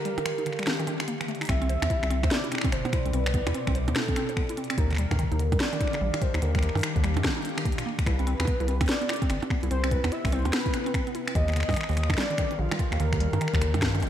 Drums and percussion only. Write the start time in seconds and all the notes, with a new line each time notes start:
0.05 closed hi-hat
0.18 closed hi-hat, percussion blips
0.26 finger snap, closed hi-hat
0.38 closed hi-hat
0.46 finger snap, closed hi-hat
0.52 finger snap
0.59 finger snap, closed hi-hat
0.63 finger snap
0.67 finger snap, snare, closed hi-hat
0.80 closed hi-hat
0.87 closed hi-hat
1.00 finger snap, closed hi-hat
1.08 closed hi-hat
1.21 finger snap, closed hi-hat
1.28 closed hi-hat
1.35 closed hi-hat
1.41 finger snap, closed hi-hat
1.43 closed hi-hat
1.45 closed hi-hat
1.47 finger snap, kick, closed hi-hat
1.49 closed hi-hat
1.62 closed hi-hat
1.69 closed hi-hat
1.82 finger snap, closed hi-hat, percussion blips
1.90 kick, closed hi-hat
2.03 finger snap, closed hi-hat
2.11 closed hi-hat
2.23 finger snap, kick, closed hi-hat, percussion blips
2.31 snare, closed hi-hat
2.44 closed hi-hat
2.52 finger snap, closed hi-hat
2.55 finger snap
2.58 finger snap
2.61 finger snap, kick, closed hi-hat
2.72 finger snap, closed hi-hat
2.85 closed hi-hat, percussion blips
2.93 finger snap, kick, closed hi-hat
3.06 closed hi-hat
3.13 closed hi-hat
3.26 finger snap, closed hi-hat
3.34 kick, closed hi-hat
3.47 finger snap, closed hi-hat, percussion blips
3.54 closed hi-hat
3.67 finger snap, kick, closed hi-hat
3.75 closed hi-hat
3.88 closed hi-hat, percussion blips
3.96 finger snap, snare, closed hi-hat
4.08 kick, closed hi-hat
4.16 finger snap, closed hi-hat
4.29 closed hi-hat
4.37 finger snap, kick
4.49 closed hi-hat
4.57 closed hi-hat
4.64 closed hi-hat
4.70 finger snap, closed hi-hat
4.78 kick, closed hi-hat
4.91 finger snap, closed hi-hat
4.93 finger snap
4.95 finger snap
4.96 finger snap, closed hi-hat
5.11 finger snap, kick, closed hi-hat, percussion blips
5.16 kick, closed hi-hat
5.23 kick
5.32 closed hi-hat
5.39 closed hi-hat
5.52 kick, closed hi-hat, percussion blips
5.60 finger snap, snare, closed hi-hat
5.73 closed hi-hat
5.80 finger snap, kick, closed hi-hat
5.87 finger snap
5.93 finger snap, closed hi-hat
6.14 finger snap, closed hi-hat, percussion blips
6.22 kick, closed hi-hat
6.34 finger snap, closed hi-hat
6.42 closed hi-hat
6.55 finger snap, kick, closed hi-hat
6.59 finger snap
6.63 finger snap, closed hi-hat
6.69 finger snap
6.75 closed hi-hat, percussion blips
6.77 closed hi-hat
6.79 closed hi-hat
6.81 finger snap, closed hi-hat
6.83 closed hi-hat
6.96 kick, closed hi-hat
7.04 finger snap, closed hi-hat
7.17 closed hi-hat, percussion blips
7.24 finger snap, kick, snare, closed hi-hat
7.37 closed hi-hat
7.42 closed hi-hat
7.45 closed hi-hat
7.49 closed hi-hat
7.58 finger snap, closed hi-hat
7.65 kick, closed hi-hat
7.72 closed hi-hat
7.78 finger snap, closed hi-hat
7.99 finger snap, kick, closed hi-hat
8.06 finger snap, kick, closed hi-hat
8.19 closed hi-hat
8.27 closed hi-hat
8.40 finger snap, closed hi-hat, percussion blips
8.45 kick, closed hi-hat, percussion blips
8.60 closed hi-hat
8.68 closed hi-hat
8.81 finger snap, kick, closed hi-hat, percussion blips
8.86 snare, closed hi-hat
8.89 closed hi-hat
9.02 closed hi-hat
9.09 finger snap, closed hi-hat
9.13 closed hi-hat
9.16 closed hi-hat
9.22 kick, closed hi-hat
9.30 finger snap, closed hi-hat
9.42 closed hi-hat, percussion blips
9.50 finger snap, kick
9.63 closed hi-hat
9.71 closed hi-hat
9.84 finger snap, closed hi-hat
9.91 kick, closed hi-hat
10.04 finger snap, closed hi-hat, percussion blips
10.12 closed hi-hat
10.25 finger snap, kick, closed hi-hat
10.27 closed hi-hat
10.29 closed hi-hat
10.30 closed hi-hat
10.32 closed hi-hat
10.36 closed hi-hat
10.39 closed hi-hat
10.42 closed hi-hat
10.45 closed hi-hat, percussion blips
10.53 finger snap, snare, closed hi-hat
10.66 kick, closed hi-hat
10.74 finger snap, closed hi-hat
10.86 closed hi-hat
10.94 finger snap, kick, closed hi-hat
11.07 closed hi-hat
11.15 closed hi-hat
11.27 finger snap, closed hi-hat
11.35 kick, closed hi-hat
11.48 finger snap, closed hi-hat
11.52 finger snap, closed hi-hat
11.56 finger snap, closed hi-hat
11.60 finger snap, closed hi-hat
11.63 finger snap
11.69 finger snap, kick, closed hi-hat, percussion blips
11.71 closed hi-hat
11.73 finger snap, closed hi-hat
11.75 finger snap, closed hi-hat
11.76 closed hi-hat
11.81 finger snap
11.83 finger snap
11.89 closed hi-hat
11.91 closed hi-hat
11.93 closed hi-hat
11.95 finger snap, closed hi-hat
11.97 closed hi-hat
12.03 finger snap
12.10 finger snap, kick, closed hi-hat, percussion blips
12.14 finger snap
12.18 finger snap, snare, closed hi-hat
12.30 closed hi-hat
12.38 finger snap, kick, closed hi-hat
12.51 closed hi-hat
12.71 finger snap, closed hi-hat, percussion blips
12.79 kick, closed hi-hat
12.92 finger snap, closed hi-hat
13.00 closed hi-hat
13.12 finger snap, kick, closed hi-hat
13.20 closed hi-hat
13.33 closed hi-hat, percussion blips
13.41 finger snap, closed hi-hat
13.48 finger snap
13.54 finger snap, kick, closed hi-hat
13.61 finger snap, closed hi-hat
13.74 closed hi-hat, percussion blips
13.82 finger snap, kick, snare, closed hi-hat
13.95 closed hi-hat
14.00 closed hi-hat
14.03 closed hi-hat